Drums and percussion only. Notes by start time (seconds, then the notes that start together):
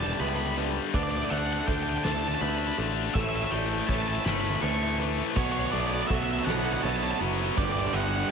0.20 ride
0.57 ride
0.94 kick, ride
1.31 ride
1.68 kick, ride
2.05 snare, ride
2.42 ride
2.78 ride
3.15 kick, ride
3.52 ride
3.89 kick, ride
4.26 snare, ride
4.63 ride
4.99 ride
5.36 kick, crash
5.73 ride
6.10 kick, ride
6.47 snare, ride
6.84 ride
7.21 ride
7.57 kick, ride
7.94 ride